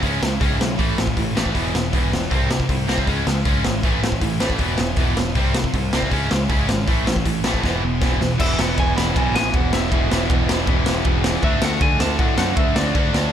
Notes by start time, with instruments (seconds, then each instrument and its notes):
0.03 picked electric bass C#2, distorted electric guitar C#3 G#3 C#4 E4, kick, open hi-hat
0.21 picked electric bass C#2, distorted electric guitar C#3 G#3, snare
0.40 picked electric bass C#2, distorted electric guitar C#3 G#3 C#4, kick, open hi-hat
0.60 picked electric bass B1, distorted electric guitar C#3 G#3, snare
0.77 picked electric bass A1, distorted electric guitar A2 E3 A3 C#4 E4, kick, open hi-hat
0.97 picked electric bass A1, distorted electric guitar A2 E3, snare
1.07 kick
1.17 picked electric bass A1, distorted electric guitar A2 E3, kick, open hi-hat
1.35 picked electric bass A1, distorted electric guitar A2 E3 A3, snare
1.46 kick
1.54 picked electric bass E1, distorted electric guitar E2 B2 E3 G#3 B3 E4, kick, open hi-hat
1.73 picked electric bass E1, distorted electric guitar E2 B2, snare
1.93 picked electric bass E1, distorted electric guitar E2 B2 E3, kick, open hi-hat
2.11 picked electric bass E1, distorted electric guitar E2 B2, snare
2.30 picked electric bass C2, distorted electric guitar C3 G3 C4, kick, open hi-hat
2.35 distorted electric guitar E4
2.49 distorted electric guitar C3 G3, snare
2.60 kick
2.69 picked electric bass C2, distorted electric guitar C3 G3, kick, open hi-hat
2.88 picked electric bass C2, distorted electric guitar C3 G3 C4, snare
2.98 kick
3.06 picked electric bass C#2, distorted electric guitar C#3 G#3 C#4 E4, kick, open hi-hat
3.26 picked electric bass C#2, distorted electric guitar C#3 G#3, snare
3.45 picked electric bass C#2, distorted electric guitar C#3 G#3 C#4, kick, open hi-hat
3.65 picked electric bass G#1, distorted electric guitar C#3 G#3, snare
3.83 picked electric bass A1, distorted electric guitar A2 E3 A3 C#4 E4, kick, open hi-hat
4.03 picked electric bass A1, distorted electric guitar A2 E3, snare
4.12 kick
4.21 picked electric bass A1, distorted electric guitar A2 E3, kick, open hi-hat
4.40 picked electric bass A1, distorted electric guitar A2 E3 A3, snare
4.50 kick
4.58 picked electric bass E1, distorted electric guitar E2 B2 E3 G#3 B3 E4, kick, open hi-hat
4.78 picked electric bass E1, distorted electric guitar E2 B2, snare
4.96 picked electric bass E1, distorted electric guitar E2 B2 E3, kick, open hi-hat
5.17 picked electric bass E1, distorted electric guitar E2 B2, snare
5.34 picked electric bass C2, distorted electric guitar C3 G3 C4 E4, kick, open hi-hat
5.54 distorted electric guitar C3 G3, snare
5.64 kick
5.74 picked electric bass C2, distorted electric guitar C3 G3, kick, open hi-hat
5.93 picked electric bass C2, distorted electric guitar C3 G3 C4, snare
6.02 kick
6.10 picked electric bass C#2, distorted electric guitar C#3 G#3 C#4 E4, kick, open hi-hat
6.31 picked electric bass C#2, distorted electric guitar C#3 G#3, snare
6.49 picked electric bass C#2, distorted electric guitar C#3 G#3 C#4, kick, open hi-hat
6.68 picked electric bass G#1, distorted electric guitar C#3 G#3, snare
6.86 picked electric bass A1, distorted electric guitar A2 E3 A3 C#4 E4, kick, open hi-hat
7.06 picked electric bass A1, distorted electric guitar A2 E3, snare
7.16 kick
7.26 picked electric bass A1, distorted electric guitar A2 E3, kick, open hi-hat
7.44 picked electric bass A1, distorted electric guitar A2 E3 A3, snare
7.54 kick
7.62 picked electric bass E1, distorted electric guitar E2 B2 E3 G#3 B3 E4, kick, snare
7.82 picked electric bass E1, distorted electric guitar E2 B2
8.01 picked electric bass E1, distorted electric guitar E2 B2 E3, kick, snare
8.20 picked electric bass E1, distorted electric guitar E2 B2, snare
8.38 picked electric bass E1, distorted electric guitar E2 B2 E3 G#3 B3 E4, lead electric guitar E5, kick, crash
8.59 picked electric bass E1, distorted electric guitar E3 G#3 B3 E4, lead electric guitar F#5, snare
8.77 picked electric bass E1, distorted electric guitar E3 G#3 B3 E4, lead electric guitar G#5, kick, ride
8.96 picked electric bass E1, distorted electric guitar E3 G#3 B3 E4, lead electric guitar B5, snare
9.15 picked electric bass B1, distorted electric guitar E2 B2 E3 G#3 B3 E4, lead electric guitar G#5, kick, ride
9.34 picked electric bass A1, distorted electric guitar E3 G#3 B3 E4, lead electric guitar G#5, snare
9.52 picked electric bass E1, distorted electric guitar E3 G#3 B3 E4, lead electric guitar F#5, kick, ride
9.71 picked electric bass E1, distorted electric guitar E3 G#3 B3 E4, lead electric guitar E5, snare
9.90 picked electric bass E1, distorted electric guitar E2 B2 E3 G#3 B3 E4, kick, ride
10.10 picked electric bass E1, distorted electric guitar E3 G#3 B3 E4, snare
10.29 picked electric bass E1, distorted electric guitar E3 G#3 B3 E4, kick, ride
10.49 picked electric bass E1, distorted electric guitar E3 G#3 B3 E4, snare
10.66 picked electric bass E1, distorted electric guitar E2 B2 E3 G#3 B3 E4, kick, ride
10.86 picked electric bass E1, distorted electric guitar E3 G#3 B3 E4, snare
11.04 picked electric bass E1, distorted electric guitar E3 G#3 B3 E4, kick, ride
11.24 distorted electric guitar E3 G#3 B3 E4, snare
11.42 picked electric bass D2, distorted electric guitar D3 A3 D4 F#4, lead electric guitar E5, kick, ride
11.61 picked electric bass D2, distorted electric guitar D3 A3 D4 F#4, lead electric guitar F#5, snare
11.81 picked electric bass D2, distorted electric guitar D3 A3 D4 F#4, lead electric guitar G#5, kick, ride
12.00 picked electric bass D2, distorted electric guitar D3 A3 D4 F#4, lead electric guitar A5, snare
12.18 picked electric bass A2, distorted electric guitar D3 A3 D4 F#4, lead electric guitar F#5, kick, ride
12.38 picked electric bass F#2, distorted electric guitar D3 A3 D4 F#4, lead electric guitar F#5, snare
12.56 picked electric bass D2, distorted electric guitar D3 A3 D4 F#4, lead electric guitar E5, kick, ride
12.75 picked electric bass D2, distorted electric guitar D3 A3 D4 F#4, lead electric guitar D5, snare
12.94 picked electric bass D2, distorted electric guitar D3 A3 D4 F#4, kick, ride
13.13 picked electric bass D2, distorted electric guitar D3 A3 D4 F#4, snare